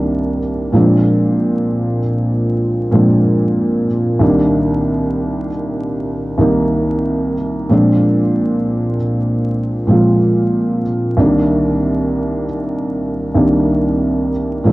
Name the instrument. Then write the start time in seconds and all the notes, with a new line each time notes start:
felt piano
Already playing: C2 D#3 G3 A#3 D4
0.72 A#2 F3 G#3 C4 D4
2.91 A#2 F3 G#3 C4 D4
4.20 C2 D#3 G3 A#3 D4
6.38 C2 D#3 G3 A#3 D#4
7.69 A#2 F3 G#3 C4 D4
9.87 A#2 F3 G#3 C4 F4
11.17 C2 D3 G3 A#3 D4
11.24 D#3
13.34 C2 D#3 G3 A#3 D4
14.64 A#2 F3 G#3 C4 D4